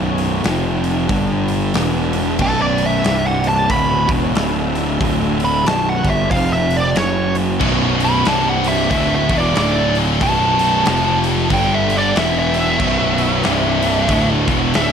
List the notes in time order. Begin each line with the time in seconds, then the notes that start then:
Already playing: B0 B1 F#2 B2 B3 F#4 C#5
0.18 open hi-hat
0.43 F1 F2 C3 F3 C4 G4, snare, open hi-hat
0.84 open hi-hat
1.08 G1 G2 D3 G3 D4 A4, kick, open hi-hat
1.48 open hi-hat
1.74 E1 E2 B2 E3 B3 F#4, snare, open hi-hat
2.13 open hi-hat
2.38 B0 B1 F#2 B2 F#4 A4 C#5, kick, crash
2.62 D5
2.78 open hi-hat
2.86 E5
3.03 C1 C2 G2 C3 C4 G4 D5, snare, open hi-hat
3.27 F#5
3.44 open hi-hat
3.48 A5
3.69 D1 D2 A2 D3 B3 F#4 C#5 B5, kick, open hi-hat
4.08 E1 E2 B2 E3, kick, open hi-hat
4.34 D1 D2 A2 D3 D4 A4 E5, snare, open hi-hat
4.75 open hi-hat
5.00 D1 D2 A2 D3, kick, open hi-hat
5.40 open hi-hat
5.45 B5
5.64 B0 B1 F#2 B2 B3 F#4 C#5 A5, snare, open hi-hat
5.89 F#5
6.04 G1 G2 D3 G3, kick, open hi-hat
6.10 E5
6.30 F1 F2 C3 F3 C4 G4 F5, kick, open hi-hat
6.53 E5
6.70 open hi-hat
6.77 D5
6.95 F#1 F#2 C#3 F#3 C#4 F#4 C#5, snare, open hi-hat
7.35 open hi-hat
7.60 B0 B1 F#2 B2 B3 C#5, kick, crash
8.00 open hi-hat
8.05 B5
8.25 C1 C2 G2 C3 C4 G4 D5 A5, snare, open hi-hat
8.49 F#5
8.64 open hi-hat
8.68 E5
8.90 D1 D2 A2 D3 B3 F#4 C#5 E5, kick, open hi-hat
9.15 E5
9.29 E1 E2 B2 E3, kick, open hi-hat
9.38 D5
9.56 D1 D2 A2 D3 D4 A4 D5 E5, snare, open hi-hat
9.95 open hi-hat
10.21 B0 B1 F#2 B2 B3 F#4 C#5 A5, kick, open hi-hat
10.59 open hi-hat
10.84 F1 F2 C3 F3 C4 G4, snare, open hi-hat
11.24 open hi-hat
11.50 G1 G2 D3 G3 D4 A4, kick, open hi-hat
11.54 G5
11.75 E5
11.90 open hi-hat
11.98 D5
12.15 E1 E2 B2 E3 B3 F#4 E5, snare, open hi-hat
12.39 E5
12.54 open hi-hat
12.78 B0 B1 F#2 B2 C#5, kick, crash
13.18 open hi-hat
13.43 C1 C2 G2 C3 C4 G4 D5, snare, open hi-hat
13.83 open hi-hat
14.09 D1 D2 A2 D3 B3 F#4 C#5, kick, open hi-hat
14.48 E1 E2 B2 E3, kick, open hi-hat
14.74 D1 D2 A2 D3 D4 A4 E5, snare, open hi-hat